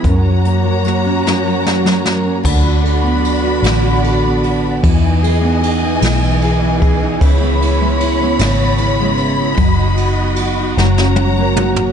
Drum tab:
CC |------------|x-----------|------------|------------|
RD |------------|--x-x-x-x-x-|x-x-x-x-x-x-|x-x-x-x-x-x-|
HH |x-x-x-------|------------|------------|------------|
SD |----r-o-ooo-|------o-----|------o-----|------o-----|
T1 |------------|------------|------------|------------|
T2 |------------|------------|------------|------------|
FT |------------|------------|------------|------------|
BD |o-----------|o-----------|o---------o-|o-----------|

CC |------------|
RD |x-x-x-------|
HH |------------|
SD |------oo----|
T1 |--------o---|
T2 |----------o-|
FT |-----------o|
BD |o-----------|